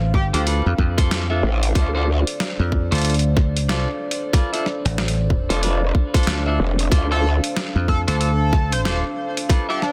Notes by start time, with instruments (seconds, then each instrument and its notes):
Already playing: slap bass A1, analog synth pad D4 A4 C5 F5
0.12 slap bass G#1, analog synth lead G4, kick
0.33 slap bass D2, clean electric guitar D4 F4 A4 C5, analog synth lead G4, closed hi-hat
0.46 clean electric guitar D4 F4 A4 B4, closed hi-hat
0.66 slap bass F2
0.78 slap bass F2, kick
0.98 clean electric guitar D4 F4 A4 C5, kick, closed hi-hat
1.11 snare, closed hi-hat
1.30 clean electric guitar D4 F4 A4 E5
1.43 wobble bass A1
1.63 closed hi-hat
1.75 wobble bass D2, clean electric guitar D4 F4 A4 C5, analog synth pad D5, kick, closed hi-hat
1.95 clean electric guitar D4 F4 A4 C5
2.27 closed hi-hat
2.40 snare, closed hi-hat
2.59 slap bass F2
2.72 kick
2.91 slap bass D2, clean electric guitar D4 F4 A4 C5, closed hi-hat
2.95 closed hi-hat
2.98 closed hi-hat
3.02 closed hi-hat
3.05 closed hi-hat
3.10 closed hi-hat
3.14 closed hi-hat
3.19 closed hi-hat
3.37 kick, snare
3.57 slap bass C#2, closed hi-hat
3.69 clean electric guitar D4 F4 A4 C5, snare, closed hi-hat
4.11 closed hi-hat
4.33 clean electric guitar D4 F4 A4 B4, kick, snare, closed hi-hat
4.53 clean electric guitar D4 F4 A4 E5, closed hi-hat
4.66 snare
4.85 slap bass A1, snare, closed hi-hat
4.98 snare
5.08 closed hi-hat
5.30 kick
5.49 wobble bass F1, clean electric guitar D4 F4 A4 C5, closed hi-hat
5.62 clean electric guitar D4 F4 A4 B4, closed hi-hat
5.95 kick
6.14 clean electric guitar D4 F4 A4 C5, kick, closed hi-hat
6.17 closed hi-hat
6.23 slap bass D2, closed hi-hat
6.27 snare, closed hi-hat
6.46 clean electric guitar D4 F4 A4 E5
6.60 wobble bass F1
6.79 closed hi-hat
6.91 wobble bass D2, clean electric guitar D4 F4 A4 C5, analog synth pad F5, kick, closed hi-hat
7.11 clean electric guitar D4 F4 A4 C5, analog synth lead A4
7.44 closed hi-hat
7.57 snare, closed hi-hat
7.76 slap bass F2
7.88 analog synth lead A4, kick
8.07 slap bass D2, clean electric guitar D4 F4 A4 C5, analog synth lead A4, closed hi-hat
8.20 analog synth lead A4, closed hi-hat
8.53 kick, snare
8.72 analog synth lead C5, closed hi-hat
8.85 clean electric guitar D4 F4 A4 C5, analog synth lead C5, snare, closed hi-hat
9.37 closed hi-hat
9.49 clean electric guitar D4 F4 A4 B4, kick, snare, closed hi-hat
9.69 clean electric guitar D4 F4 A4 E5, analog synth lead G4
9.82 analog synth lead D4, snare